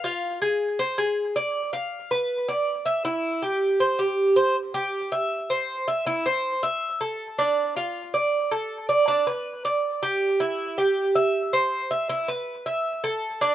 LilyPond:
\new Staff \with { instrumentName = "Cuban tres" } { \time 4/4 \key c \major \tempo 4 = 159 f'4 aes'4 c''8 aes'4 d''8~ | d''8 f''4 b'4 d''4 e''8 | e'4 g'4 c''8 g'4 c''8 | r8 g'4 e''4 c''4 e''8 |
e'8 c''4 e''4 a'4 d'8~ | d'8 f'4 d''4 a'4 d''8 | d'8 b'4 d''4 g'4 e'8~ | e'8 g'4 e''4 c''4 e''8 |
e'8 b'4 e''4 a'4 d'8 | }